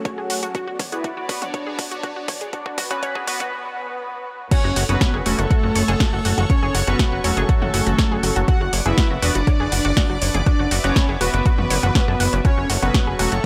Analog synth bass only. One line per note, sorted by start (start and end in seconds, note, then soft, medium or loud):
4.64 4.72 F#1 medium
4.76 4.84 F#1 loud
4.89 4.96 F#1 medium
5.14 5.21 F#1 medium
5.26 5.34 E1 loud
5.39 5.46 F#1 medium
5.63 5.71 F#1 medium
5.75 5.83 F#1 loud
5.88 5.96 F#1 medium
6.13 6.20 F#1 medium
6.25 6.33 F#1 loud
6.38 6.45 F#1 medium
6.63 6.70 F#1 medium
6.75 6.82 F#1 loud
6.87 6.95 F#1 medium
7.12 7.20 F#1 medium
7.24 7.32 E1 loud
7.37 7.44 F#1 medium
7.62 7.69 F#1 medium
7.74 7.82 F#1 loud
7.87 7.94 F#1 medium
8.11 8.19 F#1 medium
8.23 8.31 F#1 loud
8.36 8.44 F#1 loud
8.61 8.68 F#1 medium
8.73 8.81 F#1 loud
8.86 8.93 F#1 medium
9.11 9.18 F#1 medium
9.23 9.30 E1 loud
9.35 9.43 F#1 medium
9.60 9.67 F#1 medium
9.72 9.80 F#1 loud
9.85 9.92 F#1 medium
10.10 10.17 F#1 medium
10.22 10.30 F#1 loud
10.35 10.42 F#1 loud
10.59 10.67 F#1 medium
10.71 10.79 F#1 loud
10.84 10.92 F#1 medium
11.09 11.16 F#1 medium
11.21 11.29 E1 loud
11.34 11.41 F#1 loud
11.59 11.66 F#1 medium
11.70 11.78 F#1 loud
11.83 11.91 F#1 medium
12.08 12.15 F#2 medium
12.20 12.28 F#1 loud
12.33 12.40 F#1 medium
12.58 12.65 F#1 medium
12.70 12.77 F#1 loud
12.83 12.90 F#1 loud
13.07 13.15 F#1 medium
13.19 13.27 E1 loud
13.32 13.39 F#1 medium